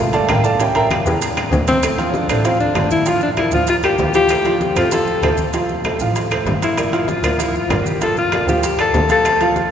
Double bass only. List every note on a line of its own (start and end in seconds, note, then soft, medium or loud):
0.30 0.38 A1 medium
1.06 1.14 E2 medium
1.52 1.60 D2 loud
2.29 2.37 A1 medium
2.76 2.84 G1 medium
3.53 3.61 D2 medium
3.99 4.07 D2 medium
4.76 4.84 F2 medium
5.22 5.30 D2 medium
6.00 6.08 A1 medium
6.47 6.55 G1 medium
7.23 7.31 D2 medium
7.70 7.78 G1 medium
8.47 8.55 D2 medium
8.94 9.02 D2 medium